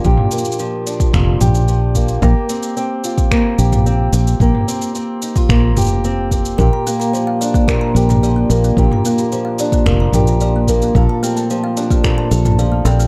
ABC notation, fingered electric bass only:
X:1
M:4/4
L:1/8
Q:1/4=110
K:Cdor
V:1 name="Fingered electric bass" clef=bass
B,,, z3 F,,, B,,,3 | B,,, z4 B,,,2 B,,, | B,,, z3 B,,, F,,,3 | B,,, z4 B,,,2 B,,, |
B,,, z3 F,,, B,,,3 | B,,, z4 B,,,2 B,,, |]